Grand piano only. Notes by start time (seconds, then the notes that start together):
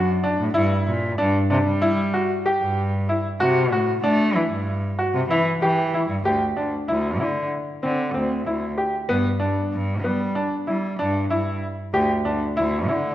0.23 D4
0.54 E4
1.18 D4
1.50 D4
1.82 E4
2.14 F#4
2.46 G4
3.09 E4
3.40 F#4
3.72 F#4
4.03 D4
4.35 E4
4.99 F#4
5.31 E4
5.62 G4
5.94 E4
6.25 G4
6.57 D4
6.88 E4
7.20 E4
7.83 C4
8.14 C4
8.46 E4
8.78 G4
9.09 B3
9.40 D4
10.04 B3
10.35 D4
10.67 E4
10.99 D4
11.30 E4
11.94 G4
12.25 D4
12.57 E4
12.89 E4